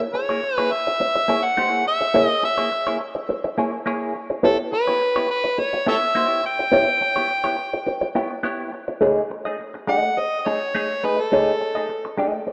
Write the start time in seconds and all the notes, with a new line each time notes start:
0.01 muted clean electric guitar stroke
0.14 C#5, muted clean electric guitar stroke
0.29 A#3 E4 G#4 C#5
0.43 muted clean electric guitar stroke
0.56 A#3 E4 G#4 B4 C#5
0.72 E5, muted clean electric guitar stroke
0.87 muted clean electric guitar stroke
1.00 muted clean electric guitar stroke
1.15 muted clean electric guitar stroke
1.28 A#3 E4 G#4 C#5
1.44 F#5, muted clean electric guitar stroke
1.57 A3 D#4 G4 C5
1.68 A#3 E4 G#4 C#5
1.86 E5, muted clean electric guitar stroke
2.01 muted clean electric guitar stroke
2.14 A#3 E4 G#4 C#5
2.26 D#5
2.30 muted clean electric guitar stroke
2.43 E5, muted clean electric guitar stroke
2.58 A#3 E4 G#4 C#5
2.72 muted clean electric guitar stroke
2.87 A#3 E4 G#4 C#5
3.00 muted clean electric guitar stroke
3.15 muted clean electric guitar stroke
3.29 muted clean electric guitar stroke
3.44 muted clean electric guitar stroke
3.58 A#3 E4 G#4 C#5
3.73 muted clean electric guitar stroke
3.86 A#3 E4 G#4 C#5
4.15 muted clean electric guitar stroke
4.30 muted clean electric guitar stroke
4.43 B3 E4 G4 A4 C#5
4.59 muted clean electric guitar stroke
4.72 B4, muted clean electric guitar stroke
4.87 B3 E4 G4 C#5
5.01 muted clean electric guitar stroke
5.16 B3 E4 G4 C#5
5.29 B4, muted clean electric guitar stroke
5.44 muted clean electric guitar stroke
5.58 C#5, muted clean electric guitar stroke
5.73 muted clean electric guitar stroke
5.87 B3 E4 G4 A4 C#5 E5
6.02 muted clean electric guitar stroke
6.15 A#3 D#4 F#4 C5
6.26 B3 E4 G4 C#5
6.43 G5, muted clean electric guitar stroke
6.59 muted clean electric guitar stroke
6.72 B3 E4 G4 C#5
6.87 muted clean electric guitar stroke
7.01 muted clean electric guitar stroke
7.16 B3 E4 G4 C#5
7.30 muted clean electric guitar stroke
7.44 B3 E4 G4 C#5
7.58 muted clean electric guitar stroke
7.73 muted clean electric guitar stroke
7.86 muted clean electric guitar stroke
8.01 muted clean electric guitar stroke
8.15 B3 E4 G4 C#5
8.31 muted clean electric guitar stroke
8.43 B3 E4 G4 C#5
8.73 muted clean electric guitar stroke
8.88 muted clean electric guitar stroke
9.01 A3 D#4 G#4 C#5
9.30 muted clean electric guitar stroke
9.45 A3 D#4 G#4 D#5
9.59 muted clean electric guitar stroke
9.74 muted clean electric guitar stroke
9.87 A3 D#4 G#4 D#5 F#5
10.03 muted clean electric guitar stroke
10.17 D#5, muted clean electric guitar stroke
10.40 D#5
10.46 A3 D#4 G#4 C#5 D#5
10.61 muted clean electric guitar stroke
10.75 A3 D#4 G#4 C#5
10.90 muted clean electric guitar stroke
11.03 A3 D#4 G#4 B4 D#5
11.19 A4, muted clean electric guitar stroke
11.32 A3 D#4 G#4 C#5
11.60 muted clean electric guitar stroke
11.75 A3 D#4 G#4 D#5
11.89 muted clean electric guitar stroke
12.05 muted clean electric guitar stroke
12.18 A3 D#4 G#4 D#5
12.34 muted clean electric guitar stroke
12.47 muted clean electric guitar stroke